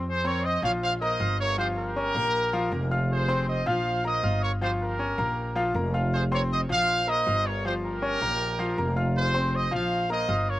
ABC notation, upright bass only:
X:1
M:4/4
L:1/8
Q:1/4=158
K:Bbdor
V:1 name="Upright bass" clef=bass
F,,3 B,,,3 G,,,2- | G,,,3 B,,,3 F,,,2- | F,,,3 B,,,3 G,,,2- | G,,,3 B,,,3 F,,,2- |
F,,,3 B,,,3 G,,,2- | G,,,3 B,,,3 F,,,2- | F,,,3 B,,,3 G,,,2 |]